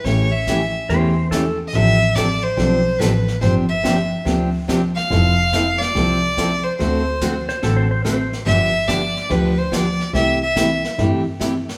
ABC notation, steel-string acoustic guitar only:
X:1
M:4/4
L:1/8
Q:"Swing" 1/4=143
K:Ddor
V:1 name="Steel-string acoustic guitar"
[^C,E,A,^CG] z [C,E,A,CG] z [C,E,A,CG] z [C,E,A,CG] z | [C,F,CDA] z [C,F,CDA] z [C,F,CDA] z [C,F,CDA] z | [C,F,CDG] z [C,F,CDG] z [C,F,CDG] z [C,F,CDG] z | [F,CEA] z [F,CEA] z [F,CEA] z [F,CEA] z |
[D,A,C^FA] z [D,A,CFA] z [D,A,CFA] z [D,A,CFA] z | [D,F,B,DG] z [D,F,B,DG] z [D,F,B,DG] z [D,F,B,DG] z | [C,E,A,EG] z [C,E,A,EG] z [C,E,A,EG] z [C,E,A,EG] z |]